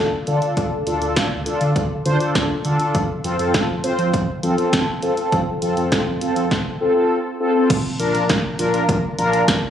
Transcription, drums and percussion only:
0.27 closed hi-hat
0.42 closed hi-hat
0.57 kick, closed hi-hat
0.87 closed hi-hat
1.02 closed hi-hat
1.16 kick, snare, closed hi-hat
1.46 closed hi-hat
1.61 closed hi-hat
1.76 kick, closed hi-hat
2.06 closed hi-hat
2.20 closed hi-hat
2.35 kick, snare, closed hi-hat
2.65 closed hi-hat
2.80 closed hi-hat
2.95 kick, closed hi-hat
3.24 closed hi-hat
3.39 closed hi-hat
3.54 kick, snare, closed hi-hat
3.84 closed hi-hat
3.99 closed hi-hat
4.14 kick, closed hi-hat
4.43 closed hi-hat
4.58 closed hi-hat
4.73 kick, snare, closed hi-hat
5.02 closed hi-hat
5.17 closed hi-hat
5.32 kick, closed hi-hat
5.62 closed hi-hat
5.77 closed hi-hat
5.92 kick, snare, closed hi-hat
6.21 closed hi-hat
6.36 closed hi-hat
6.51 kick, snare
7.70 kick, closed hi-hat, crash
8.00 closed hi-hat
8.15 closed hi-hat
8.29 kick, snare, closed hi-hat
8.59 closed hi-hat
8.74 closed hi-hat
8.89 kick, closed hi-hat
9.19 closed hi-hat
9.33 closed hi-hat
9.48 kick, snare, closed hi-hat

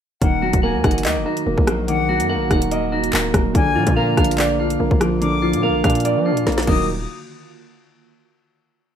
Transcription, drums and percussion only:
0.22 kick, closed hi-hat
0.53 kick, closed hi-hat
0.84 kick, cross-stick, closed hi-hat
0.91 closed hi-hat
0.98 closed hi-hat
1.05 clap, closed hi-hat
1.37 closed hi-hat
1.58 kick
1.67 cross-stick, closed hi-hat
1.88 closed hi-hat
2.20 closed hi-hat
2.51 kick, cross-stick, closed hi-hat
2.62 closed hi-hat
2.71 closed hi-hat
3.04 closed hi-hat
3.13 clap, closed hi-hat
3.34 kick, cross-stick, closed hi-hat
3.55 kick, closed hi-hat
3.87 kick, closed hi-hat
4.17 kick, cross-stick, closed hi-hat
4.24 closed hi-hat
4.31 closed hi-hat
4.38 clap, closed hi-hat
4.70 closed hi-hat
4.91 kick
5.01 cross-stick, closed hi-hat
5.22 closed hi-hat
5.53 closed hi-hat
5.84 kick, cross-stick, closed hi-hat
5.90 closed hi-hat
5.95 closed hi-hat
6.00 closed hi-hat
6.05 closed hi-hat
6.37 closed hi-hat
6.47 snare, closed hi-hat
6.52 closed hi-hat
6.58 snare, closed hi-hat
6.63 closed hi-hat
6.67 kick, crash

